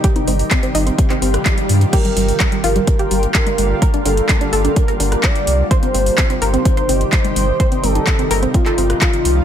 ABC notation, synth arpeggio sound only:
X:1
M:4/4
L:1/16
Q:1/4=127
K:Cdor
V:1 name="Synth arpeggio sound"
G C C z C C E C C C C z4 z | G G, G, z G, G, F G, G, G G, z4 z | B D D z D D A D D B D z4 z | c C C z C C B C C c C z4 z |
c C C z C C B C C A C z4 z |]